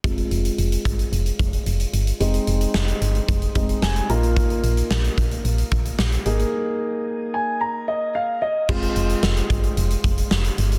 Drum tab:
CC |----------------|----------------|----------------|----------------|
HH |xxxxxxxxxxxxxxxx|xxxx-xxxxxxx-xxx|xxxx-xxxxxxx-xxx|----------------|
SD |----------------|----o-------o---|----o-------o---|----------------|
BD |o-----o---o-----|--------o-o-----|o-----o---o-----|----------------|

CC |x---------------|
HH |-xxx-xxxxxxx-xxx|
SD |----o-------o---|
BD |o-----o---o-----|